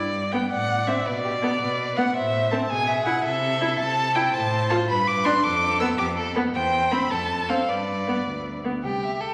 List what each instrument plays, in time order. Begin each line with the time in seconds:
Already playing: cello G2, violin D5
0.32 viola B3, violin G5
0.50 cello A2, violin D5 F#5
0.87 viola C4, violin E5
1.05 cello B2, violin B4 D5
1.24 violin G4
1.42 viola B3, violin A4
1.60 cello B2, violin B4
1.96 viola B3, violin F#5
2.15 cello A2, violin C5 E5
2.51 viola C4, violin A5
2.70 cello B2, violin G#4 G#5
2.87 violin E5
3.05 viola E4, violin F#5
3.24 cello C3, violin A4 E5
3.61 viola E4
3.78 cello C3, violin A5
4.15 viola E4, violin G5
4.33 cello A2, violin C5 A5
4.69 viola F4, violin A5
4.89 cello G2, violin B4 B5
5.07 violin D6
5.24 viola D4, violin C6
5.43 cello F2, violin A4 D6
5.80 viola B3, violin E6
5.98 cello F2, violin G4 D6
6.16 violin A4
6.35 viola B3, violin B4
6.54 cello E2, violin C5 G5
6.91 viola C4, violin B5
7.10 cello F2, violin A4 A5
7.49 viola C4, violin F5
7.68 cello G2, violin B4 D5
8.08 viola B3
8.26 cello D2
8.64 viola B3
8.83 cello C2, violin G4 G5
9.04 violin E5
9.20 violin A4 G5